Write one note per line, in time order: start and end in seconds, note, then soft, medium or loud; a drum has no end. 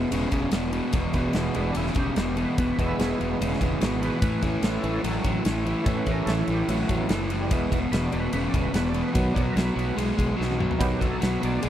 0.00 0.10 E2 medium
0.00 0.10 B2 medium
0.00 0.10 B3 medium
0.11 0.25 E1 medium
0.11 0.30 E2 medium
0.11 0.31 C#3 loud
0.11 0.30 E3 soft
0.11 0.30 G#3 soft
0.11 0.30 B3 medium
0.11 ride loud
0.32 0.46 E1 medium
0.32 0.50 E2 medium
0.32 0.51 C#3 medium
0.32 kick medium
0.32 ride medium
0.51 0.79 E1 medium
0.51 0.71 E2 medium
0.51 0.71 B2 medium
0.51 snare loud
0.51 ride medium
0.73 0.92 E2 medium
0.73 0.92 B2 medium
0.73 ride medium
0.93 1.07 E1 medium
0.93 1.12 E2 medium
0.93 1.12 B2 medium
0.93 kick loud
0.93 ride loud
1.13 1.27 E1 medium
1.13 1.33 E2 medium
1.13 1.33 B2 medium
1.13 1.72 E3 medium
1.13 1.72 G#3 medium
1.13 1.73 B3 medium
1.13 kick medium
1.13 ride medium
1.33 1.48 E1 medium
1.33 1.53 E2 medium
1.33 1.54 B2 medium
1.33 snare medium
1.33 ride medium
1.53 1.69 E1 loud
1.53 1.74 E2 medium
1.53 1.74 B2 medium
1.53 1.55 C#4 medium
1.53 ride medium
1.57 1.76 D4 medium
1.75 1.89 E1 medium
1.75 1.94 E2 medium
1.75 1.95 C#3 loud
1.75 1.97 E4 medium
1.75 ride medium
1.87 snare soft
1.94 2.09 E1 medium
1.94 2.14 E2 medium
1.94 2.15 C#3 medium
1.94 kick medium
1.94 ride medium
1.99 2.38 G4 medium
2.16 2.44 E1 medium
2.16 2.35 E2 medium
2.16 2.35 B2 medium
2.16 snare loud
2.16 ride medium
2.37 2.56 E2 medium
2.37 2.56 B2 medium
2.37 2.78 B4 medium
2.37 ride medium
2.58 2.72 E1 loud
2.58 2.76 E2 medium
2.58 2.77 B2 medium
2.58 kick loud
2.58 ride medium
2.78 2.92 E1 medium
2.78 2.97 E2 medium
2.78 2.98 B2 medium
2.78 4.19 E3 medium
2.78 4.19 G#3 medium
2.78 4.19 B3 medium
2.78 2.98 E5 medium
2.78 kick medium
2.78 ride medium
2.98 3.12 E1 medium
2.98 3.17 E2 medium
2.98 3.18 B2 loud
2.98 3.18 G#4 medium
2.98 3.19 E5 loud
2.98 snare loud
2.98 ride medium
3.20 3.34 E1 medium
3.20 3.38 E2 medium
3.20 3.38 B2 medium
3.20 ride medium
3.41 3.54 E1 medium
3.41 3.59 E2 medium
3.41 3.59 C#3 loud
3.41 ride medium
3.53 snare soft
3.60 3.75 E1 medium
3.60 3.79 E2 medium
3.60 3.80 C#3 medium
3.60 kick medium
3.60 ride medium
3.80 4.09 G#1 medium
3.80 3.99 E2 medium
3.80 4.00 B2 medium
3.80 snare loud
3.80 ride medium
3.98 4.20 E2 medium
3.98 4.01 A#4 medium
3.98 4.62 B4 loud
4.02 4.21 B2 medium
4.02 ride medium
4.22 4.36 A1 medium
4.22 4.41 A2 medium
4.22 4.41 E3 loud
4.22 kick loud
4.22 ride loud
4.42 4.57 A1 medium
4.42 4.62 A2 medium
4.42 5.01 E3 medium
4.42 4.62 E3 medium
4.42 5.01 A3 medium
4.42 5.02 C#4 medium
4.42 kick medium
4.42 ride medium
4.63 4.76 A1 medium
4.63 4.82 A2 medium
4.63 4.82 E3 medium
4.63 4.84 A4 medium
4.63 snare medium
4.63 ride medium
4.84 4.97 A1 loud
4.84 5.02 A2 medium
4.84 5.02 E3 medium
4.84 5.00 A4 medium
4.84 ride medium
5.01 5.18 A1 medium
5.01 5.23 A2 medium
5.01 5.23 F#3 medium
5.01 5.23 A4 loud
5.01 ride medium
5.20 5.41 E3 soft
5.20 5.41 A3 soft
5.20 5.41 C#4 soft
5.24 5.38 A1 medium
5.24 5.43 A2 medium
5.24 5.44 F#3 medium
5.24 kick medium
5.24 ride medium
5.45 5.73 A1 medium
5.45 5.64 A2 medium
5.45 5.64 E3 medium
5.45 snare loud
5.45 ride loud
5.65 5.84 A2 medium
5.65 5.85 E3 medium
5.65 ride medium
5.70 5.85 E5 loud
5.82 6.00 A1 loud
5.82 6.86 E3 medium
5.82 6.80 A3 medium
5.82 6.86 C#4 medium
5.82 5.99 A4 loud
5.82 kick loud
5.82 ride medium
5.87 6.05 A2 medium
5.87 6.06 E3 loud
5.96 6.12 B4 medium
6.06 6.21 A1 medium
6.06 6.26 A2 medium
6.06 6.26 E3 medium
6.06 kick medium
6.06 ride medium
6.11 6.26 A#4 loud
6.26 6.41 A1 medium
6.26 6.47 A2 medium
6.26 6.47 E3 medium
6.26 6.40 A4 medium
6.26 snare medium
6.26 ride medium
6.40 6.54 E4 medium
6.47 6.61 A1 medium
6.47 6.68 A2 medium
6.47 6.68 E3 medium
6.47 ride medium
6.53 6.68 G4 medium
6.66 6.82 A1 loud
6.66 6.88 A2 medium
6.66 6.88 F#3 loud
6.66 6.81 E4 medium
6.66 ride medium
6.81 6.86 A3 medium
6.87 7.03 A1 medium
6.87 7.08 A2 medium
6.87 7.07 E3 soft
6.87 7.09 F#3 medium
6.87 7.07 A3 soft
6.87 7.07 C#4 soft
6.87 kick medium
6.87 ride medium
6.96 7.10 B3 medium
7.09 7.51 F#1 medium
7.09 7.29 A2 medium
7.09 7.29 E3 medium
7.09 7.24 A3 loud
7.09 snare loud
7.09 ride medium
7.30 7.49 A2 medium
7.30 7.50 E3 medium
7.30 ride medium
7.41 7.53 G3 medium
7.51 7.65 E1 loud
7.51 7.69 E2 loud
7.51 7.70 B2 medium
7.51 7.79 E3 medium
7.51 7.73 G#3 loud
7.51 7.80 B3 medium
7.51 kick loud
7.51 ride loud
7.71 7.85 E1 medium
7.71 7.90 E2 medium
7.71 7.90 B2 loud
7.71 kick medium
7.71 ride medium
7.91 8.06 E1 medium
7.91 8.10 E2 medium
7.91 8.11 B2 medium
7.91 8.05 B4 loud
7.91 snare loud
7.91 ride medium
8.04 8.19 D5 loud
8.12 8.27 E1 loud
8.12 8.31 E2 medium
8.12 8.31 B2 medium
8.12 ride medium
8.20 8.32 B4 medium
8.33 8.47 E1 loud
8.33 8.52 E2 loud
8.33 8.52 C#3 medium
8.33 8.47 B4 medium
8.33 ride medium
8.48 8.61 D5 loud
8.53 8.67 E1 loud
8.53 8.72 E2 medium
8.53 8.72 C#3 medium
8.53 8.73 E3 soft
8.53 8.73 G#3 soft
8.53 8.73 B3 soft
8.53 kick medium
8.53 ride medium
8.63 8.75 B4 medium
8.73 9.01 E1 medium
8.73 8.92 E2 medium
8.73 8.93 B2 medium
8.73 8.89 B4 loud
8.73 snare loud
8.73 ride loud
8.89 9.02 D5 medium
8.94 9.13 E2 medium
8.94 9.12 B2 medium
8.94 ride medium
9.03 9.16 B4 medium
9.14 9.29 B1 loud
9.14 9.33 B2 loud
9.14 9.43 D#3 medium
9.14 9.33 F#3 medium
9.14 9.43 F#3 medium
9.14 9.44 B3 medium
9.14 kick loud
9.14 ride medium
9.18 9.30 B4 medium
9.31 9.54 B2 medium
9.31 9.54 F#3 medium
9.31 9.44 D5 medium
9.36 9.50 B1 medium
9.36 kick medium
9.36 ride medium
9.42 9.56 B4 medium
9.53 9.70 B1 medium
9.53 9.74 B2 medium
9.53 9.74 F#3 medium
9.53 9.55 A#4 medium
9.57 9.97 B4 medium
9.57 snare loud
9.57 ride medium
9.75 9.90 B1 loud
9.75 9.95 B2 medium
9.75 9.95 F#3 medium
9.75 ride medium
9.96 10.11 B1 medium
9.96 10.16 B2 medium
9.96 10.16 G#3 medium
9.96 ride medium
10.17 10.32 B1 loud
10.17 10.35 B2 medium
10.17 10.36 G#3 medium
10.17 kick medium
10.17 ride medium
10.36 10.66 B1 medium
10.36 10.56 B2 medium
10.36 10.57 F#3 medium
10.41 snare medium
10.51 high tom medium
10.58 10.78 B2 medium
10.58 10.78 F#3 medium
10.58 mid tom medium
10.71 floor tom medium
10.79 10.94 B1 loud
10.79 10.98 B2 medium
10.79 11.07 D#3 medium
10.79 11.07 F#3 medium
10.79 10.99 F#3 loud
10.79 11.08 B3 medium
10.79 11.01 G4 loud
10.79 kick loud
10.79 ride loud
11.00 11.15 B1 medium
11.00 11.19 B2 medium
11.00 11.20 F#3 medium
11.00 11.21 A4 loud
11.00 kick medium
11.00 ride medium
11.21 11.36 B1 medium
11.21 11.40 B2 medium
11.21 11.40 F#3 medium
11.21 11.43 B4 medium
11.21 snare loud
11.21 ride medium
11.39 11.56 B1 medium
11.39 11.60 B2 medium
11.39 11.61 F#3 medium
11.39 11.42 C#5 medium
11.39 ride medium
11.45 11.69 D5 loud
11.62 11.69 B1 medium
11.62 11.69 B2 medium
11.62 11.69 G#3 loud
11.62 ride medium